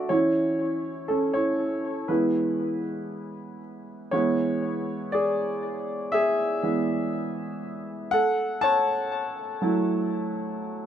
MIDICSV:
0, 0, Header, 1, 2, 480
1, 0, Start_track
1, 0, Tempo, 1006711
1, 48, Time_signature, 4, 2, 24, 8
1, 2449, Tempo, 995025
1, 5211, End_track
2, 0, Start_track
2, 0, Title_t, "Grand piano"
2, 0, Program_c, 0, 0
2, 0, Control_c, 0, 64, 127
2, 0, Note_on_c, 0, 50, 37
2, 0, Note_on_c, 0, 57, 34
2, 0, Note_on_c, 0, 66, 54
2, 0, Note_on_c, 0, 69, 65
2, 0, Note_on_c, 0, 74, 67
2, 0, Note_on_c, 0, 76, 82
2, 43, Note_on_c, 0, 73, 70
2, 47, Note_on_c, 0, 52, 42
2, 50, Note_on_c, 0, 61, 37
2, 52, Note_on_c, 0, 64, 55
2, 54, Note_off_c, 0, 50, 0
2, 54, Control_c, 0, 64, 0
2, 55, Note_off_c, 0, 57, 0
2, 56, Note_off_c, 0, 66, 0
2, 56, Note_off_c, 0, 76, 0
2, 57, Note_off_c, 0, 74, 0
2, 58, Note_off_c, 0, 69, 0
2, 134, Control_c, 0, 64, 127
2, 503, Note_off_c, 0, 64, 0
2, 515, Note_on_c, 0, 69, 60
2, 519, Note_off_c, 0, 61, 0
2, 526, Note_on_c, 0, 61, 45
2, 530, Note_off_c, 0, 73, 0
2, 633, Note_off_c, 0, 61, 0
2, 637, Note_on_c, 0, 73, 68
2, 639, Note_off_c, 0, 69, 0
2, 645, Note_on_c, 0, 64, 46
2, 977, Note_off_c, 0, 52, 0
2, 982, Note_off_c, 0, 64, 0
2, 993, Note_on_c, 0, 71, 55
2, 995, Note_on_c, 0, 52, 40
2, 999, Note_on_c, 0, 56, 37
2, 1001, Note_on_c, 0, 59, 43
2, 1002, Control_c, 0, 64, 0
2, 1002, Note_on_c, 0, 64, 49
2, 1007, Note_off_c, 0, 73, 0
2, 1082, Control_c, 0, 64, 127
2, 1318, Note_off_c, 0, 52, 0
2, 1320, Note_off_c, 0, 56, 0
2, 1321, Note_off_c, 0, 59, 0
2, 1704, Note_off_c, 0, 71, 0
2, 1708, Note_off_c, 0, 64, 0
2, 1961, Note_on_c, 0, 73, 77
2, 1967, Note_on_c, 0, 52, 49
2, 1969, Note_on_c, 0, 56, 42
2, 1972, Note_on_c, 0, 59, 56
2, 1973, Note_on_c, 0, 64, 58
2, 1974, Control_c, 0, 64, 0
2, 2067, Control_c, 0, 64, 127
2, 2432, Note_off_c, 0, 64, 0
2, 2442, Note_on_c, 0, 74, 78
2, 2452, Note_on_c, 0, 68, 54
2, 2460, Note_off_c, 0, 73, 0
2, 2912, Note_off_c, 0, 68, 0
2, 2923, Note_on_c, 0, 76, 89
2, 2934, Note_on_c, 0, 68, 64
2, 2941, Note_off_c, 0, 74, 0
2, 3163, Note_off_c, 0, 52, 0
2, 3164, Note_off_c, 0, 56, 0
2, 3167, Note_off_c, 0, 59, 0
2, 3171, Note_on_c, 0, 52, 47
2, 3172, Note_on_c, 0, 56, 42
2, 3174, Note_on_c, 0, 59, 48
2, 3392, Note_off_c, 0, 52, 0
2, 3392, Note_off_c, 0, 56, 0
2, 3393, Note_off_c, 0, 59, 0
2, 3873, Note_off_c, 0, 68, 0
2, 3884, Note_on_c, 0, 78, 101
2, 3896, Note_on_c, 0, 69, 68
2, 3897, Control_c, 0, 64, 0
2, 3916, Note_off_c, 0, 76, 0
2, 3968, Control_c, 0, 64, 127
2, 4116, Note_off_c, 0, 69, 0
2, 4126, Note_on_c, 0, 81, 102
2, 4135, Note_off_c, 0, 78, 0
2, 4137, Note_on_c, 0, 73, 69
2, 4610, Note_on_c, 0, 54, 52
2, 4614, Note_on_c, 0, 57, 47
2, 4618, Note_on_c, 0, 64, 56
2, 4929, Note_off_c, 0, 54, 0
2, 4931, Note_off_c, 0, 57, 0
2, 4933, Note_off_c, 0, 64, 0
2, 5211, Note_off_c, 0, 73, 0
2, 5211, Note_off_c, 0, 81, 0
2, 5211, End_track
0, 0, End_of_file